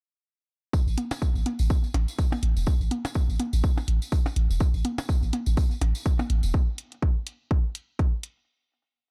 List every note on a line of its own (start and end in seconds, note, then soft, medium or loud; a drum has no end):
0.73 kick loud
0.73 tambourine medium
0.87 0.96 A1 medium
0.87 tambourine soft
0.98 closed hi-hat medium
0.98 high tom medium
1.11 closed hi-hat soft
1.11 tambourine medium
1.11 percussion blips medium
1.22 kick loud
1.22 tambourine medium
1.35 1.44 A1 medium
1.35 tambourine soft
1.46 closed hi-hat medium
1.46 high tom medium
1.59 1.68 A1 loud
1.59 tambourine medium
1.70 kick loud
1.70 tambourine medium
1.84 tambourine soft
1.94 2.06 A1 medium
1.94 closed hi-hat medium
1.94 percussion blips medium
2.08 tambourine medium
2.18 kick loud
2.18 closed hi-hat soft
2.18 tambourine medium
2.32 high tom medium
2.32 tambourine soft
2.32 percussion blips medium
2.43 2.54 A1 medium
2.43 closed hi-hat medium
2.56 2.65 E1 medium
2.56 tambourine medium
2.66 kick loud
2.66 tambourine medium
2.81 2.89 A1 medium
2.81 tambourine soft
2.91 closed hi-hat medium
2.91 high tom medium
3.05 closed hi-hat soft
3.05 tambourine medium
3.05 percussion blips medium
3.14 kick loud
3.14 tambourine medium
3.29 3.38 A1 medium
3.29 tambourine soft
3.40 closed hi-hat medium
3.40 high tom medium
3.53 3.62 A1 loud
3.53 tambourine medium
3.64 kick loud
3.64 tambourine medium
3.77 tambourine soft
3.77 percussion blips medium
3.88 3.99 A1 medium
3.88 closed hi-hat medium
4.02 tambourine medium
4.12 kick loud
4.12 closed hi-hat soft
4.12 tambourine medium
4.26 tambourine soft
4.26 percussion blips medium
4.36 4.48 A1 loud
4.36 closed hi-hat medium
4.50 4.59 E1 loud
4.50 tambourine medium
4.60 kick loud
4.60 tambourine medium
4.74 4.83 A1 loud
4.74 tambourine soft
4.85 closed hi-hat medium
4.85 high tom medium
4.98 closed hi-hat soft
4.98 tambourine medium
4.98 percussion blips medium
5.09 kick loud
5.09 tambourine medium
5.23 5.31 A1 medium
5.23 tambourine soft
5.33 closed hi-hat medium
5.33 high tom medium
5.46 5.55 A1 loud
5.46 tambourine medium
5.57 kick loud
5.57 tambourine medium
5.71 tambourine soft
5.81 5.93 A1 medium
5.81 closed hi-hat medium
5.81 percussion blips medium
5.95 tambourine medium
6.06 kick loud
6.06 closed hi-hat soft
6.06 tambourine medium
6.19 high tom medium
6.19 tambourine soft
6.19 percussion blips medium
6.30 6.41 A1 loud
6.30 closed hi-hat medium
6.43 6.52 E1 loud
6.43 tambourine medium
6.54 kick loud
6.78 closed hi-hat medium
6.92 closed hi-hat soft
7.02 kick loud
7.27 closed hi-hat medium
7.51 kick loud
7.75 closed hi-hat medium
7.99 kick loud
7.99 closed hi-hat soft
8.23 closed hi-hat medium